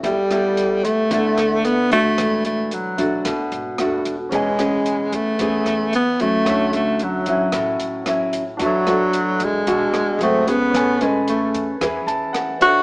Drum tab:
HH |xxxxxxxx|xxxxxxxx|xxxxxxxx|xxxxxxxx|
SD |-r---r--|r---r-r-|-r---r--|r---r-r-|
BD |o--oo--o|o--oo--o|o--oo--o|o--oo--o|

HH |xxxxxxxx|xxxxxxxx|
SD |-r---r--|r---r-r-|
BD |o--oo--o|o--oo--o|